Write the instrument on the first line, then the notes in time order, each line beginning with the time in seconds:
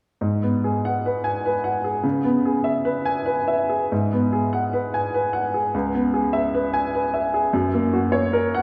upright piano
0.21 G#2
0.43 B3
0.64 G#4
0.85 F#5
1.06 B4
1.24 G#5
1.46 B4
1.64 F#5
1.84 G#4
2.03 C#3
2.24 B3
2.45 G#4
2.64 E5
2.85 B4
3.05 G#5
3.26 B4
3.48 E5
3.69 G#4
3.92 G#2
4.12 B3
4.33 G#4
4.53 F#5
4.73 B4
4.94 G#5
5.14 B4
5.33 F#5
5.54 G#4
5.74 C#2
5.94 B3
6.14 G#4
6.33 E5
6.54 B4
6.74 G#5
6.95 B4
7.14 E5
7.34 G#4
7.53 F#2
7.74 A#3
7.93 F#4
8.12 C#5
8.33 A#4
8.55 F#5